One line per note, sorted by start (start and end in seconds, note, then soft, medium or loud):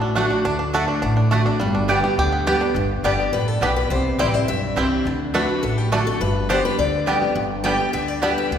0.00 0.26 A1 medium
0.00 0.42 A2 loud
0.00 0.01 D4 medium
0.00 0.30 D4 medium
0.15 0.30 D3 medium
0.15 0.56 A3 medium
0.15 0.25 A3 medium
0.15 0.30 A3 medium
0.15 0.31 D4 medium
0.15 0.25 F#4 medium
0.15 0.29 F#4 loud
0.15 0.25 D5 loud
0.15 0.25 F#5 loud
0.30 0.45 D4 medium
0.30 0.44 F#4 medium
0.44 0.84 D2 loud
0.44 0.73 D3 medium
0.44 0.58 D4 medium
0.59 0.74 D4 medium
0.73 1.01 D3 medium
0.73 0.83 A3 medium
0.73 1.01 A3 loud
0.73 1.02 D4 loud
0.73 0.83 F#4 medium
0.73 1.02 F#4 loud
0.73 0.88 A4 loud
0.73 0.83 D5 loud
0.73 0.83 F#5 loud
0.88 1.02 D4 medium
1.02 1.42 A1 medium
1.02 1.57 A2 medium
1.02 1.16 D4 medium
1.17 1.45 D4 medium
1.31 1.45 D3 medium
1.31 1.59 A3 medium
1.31 1.40 A3 medium
1.31 1.45 A3 loud
1.31 1.46 D4 loud
1.31 1.41 F#4 medium
1.31 1.45 F#4 medium
1.31 1.41 D5 medium
1.31 1.41 F#5 medium
1.46 1.74 D4 medium
1.46 1.61 D4 medium
1.46 1.60 F#4 medium
1.60 1.99 G1 loud
1.60 2.15 G2 medium
1.60 2.00 G3 medium
1.75 2.15 D4 medium
1.88 2.03 D3 medium
1.88 2.03 G3 loud
1.88 1.98 B3 medium
1.88 2.29 B3 medium
1.88 2.03 B3 loud
1.88 1.98 G4 loud
1.88 2.02 G4 loud
1.88 1.98 D5 medium
1.88 1.98 G5 loud
2.04 2.18 B3 medium
2.04 2.17 G4 medium
2.04 2.18 G4 medium
2.17 2.57 D2 medium
2.17 2.46 D3 medium
2.17 2.46 G4 loud
2.33 2.72 B3 medium
2.46 2.61 D3 medium
2.46 2.61 G3 medium
2.46 2.56 B3 medium
2.46 2.61 B3 medium
2.46 2.56 G4 medium
2.46 2.60 G4 loud
2.46 2.61 G4 loud
2.46 2.56 D5 loud
2.46 2.56 G5 loud
2.61 2.76 B3 soft
2.61 2.75 D4 medium
2.61 2.75 G4 medium
2.75 2.94 G1 loud
2.75 3.30 G2 medium
3.03 3.28 G1 medium
3.03 3.18 D3 medium
3.03 3.18 G3 medium
3.03 3.11 G3 medium
3.03 3.13 B3 medium
3.03 3.11 B3 medium
3.03 3.19 B3 medium
3.03 3.11 D4 medium
3.03 3.13 G4 medium
3.03 3.18 G4 loud
3.03 3.13 D5 medium
3.03 3.32 D5 medium
3.03 3.14 G5 medium
3.20 3.33 B3 medium
3.20 3.33 G4 medium
3.32 3.57 A1 medium
3.32 3.61 A2 medium
3.32 3.48 B4 medium
3.48 3.62 A4 medium
3.61 3.86 B1 medium
3.61 3.90 B2 medium
3.61 3.68 G3 medium
3.61 3.70 B3 medium
3.61 3.68 B3 medium
3.61 3.69 D4 medium
3.61 3.71 G4 medium
3.61 3.75 B4 medium
3.61 3.71 D5 medium
3.61 3.71 G5 medium
3.76 3.90 B4 medium
3.90 4.10 C2 loud
3.90 4.46 C3 medium
3.90 4.19 C5 medium
4.19 4.44 A1 medium
4.19 4.34 E3 medium
4.19 4.26 G3 medium
4.19 4.34 G3 medium
4.19 4.28 C4 medium
4.19 4.26 C4 medium
4.19 4.34 C4 medium
4.19 4.28 E4 medium
4.19 4.26 E4 medium
4.19 4.33 E4 medium
4.19 4.28 C5 loud
4.19 4.34 D5 loud
4.19 4.29 G5 loud
4.34 4.49 C4 medium
4.34 4.48 E4 medium
4.34 4.48 C5 medium
4.48 4.72 B1 medium
4.48 5.03 G2 medium
4.48 4.88 E5 loud
4.76 5.01 C2 medium
4.76 5.04 E3 medium
4.76 4.83 G3 medium
4.76 5.05 G3 medium
4.76 4.86 C4 medium
4.76 4.83 C4 medium
4.76 5.05 C4 medium
4.76 4.86 E4 loud
4.76 4.84 E4 medium
4.76 5.05 E4 loud
4.76 4.86 C5 medium
4.76 4.86 G5 medium
5.05 5.45 D2 loud
5.05 5.33 D3 medium
5.34 5.48 D3 medium
5.34 5.43 A3 medium
5.34 5.41 A3 medium
5.34 5.49 A3 medium
5.34 5.37 D4 medium
5.34 5.49 D4 medium
5.34 5.43 F#4 medium
5.34 5.48 F#4 loud
5.34 5.64 B4 medium
5.34 5.44 D5 loud
5.34 5.44 F#5 loud
5.49 5.63 D4 medium
5.49 5.62 F#4 medium
5.63 6.02 A1 medium
5.63 6.18 A2 medium
5.63 5.78 A4 medium
5.78 5.92 G4 medium
5.92 6.06 D3 medium
5.92 6.01 A3 medium
5.92 5.99 A3 medium
5.92 6.07 A3 medium
5.92 5.95 D4 medium
5.92 6.07 D4 medium
5.92 6.01 F#4 medium
5.92 6.05 F#4 loud
5.92 6.06 A4 medium
5.92 6.01 D5 medium
5.92 6.01 F#5 medium
6.06 6.21 D4 medium
6.06 6.20 F#4 medium
6.06 6.21 A4 medium
6.20 6.60 G1 loud
6.20 6.76 G2 medium
6.20 6.50 B4 loud
6.49 6.64 D3 medium
6.49 6.56 G3 medium
6.49 6.64 G3 medium
6.49 6.58 B3 medium
6.49 6.56 B3 medium
6.49 6.64 B3 medium
6.49 6.57 D4 medium
6.49 6.59 G4 loud
6.49 6.64 G4 loud
6.49 6.65 C5 loud
6.49 6.59 D5 loud
6.49 6.59 G5 loud
6.65 6.79 B3 soft
6.65 6.78 G4 medium
6.65 6.78 B4 medium
6.78 7.17 D2 medium
6.78 7.06 D3 medium
6.78 7.19 D5 loud
7.06 7.21 D3 medium
7.06 7.14 G3 medium
7.06 7.21 G3 medium
7.06 7.16 B3 medium
7.06 7.14 B3 medium
7.06 7.22 B3 loud
7.06 7.14 D4 medium
7.06 7.16 G4 medium
7.06 7.21 G4 loud
7.06 7.16 D5 medium
7.06 7.16 G5 loud
7.22 7.36 B3 soft
7.22 7.35 G4 medium
7.35 7.75 G1 medium
7.35 7.91 G2 medium
7.64 7.78 D3 medium
7.64 7.79 G3 medium
7.64 7.71 G3 medium
7.64 7.74 B3 medium
7.64 7.79 B3 medium
7.64 7.72 B3 medium
7.64 7.72 D4 medium
7.64 7.74 G4 medium
7.64 7.79 G4 medium
7.64 7.74 D5 loud
7.64 7.93 G5 loud
7.64 7.74 G5 loud
7.80 7.94 B3 soft
7.80 7.93 G4 medium
7.93 8.33 D2 medium
7.93 8.21 D3 medium
7.93 8.08 E5 loud
8.08 8.22 D5 medium
8.22 8.50 D3 medium
8.22 8.29 G3 medium
8.22 8.50 G3 medium
8.22 8.31 B3 medium
8.22 8.29 B3 medium
8.22 8.51 B3 medium
8.22 8.29 D4 medium
8.22 8.31 G4 medium
8.22 8.51 G4 loud
8.22 8.31 D5 medium
8.22 8.37 E5 medium
8.22 8.32 G5 loud
8.38 8.51 E5 medium
8.51 8.58 D2 loud
8.51 8.58 D3 medium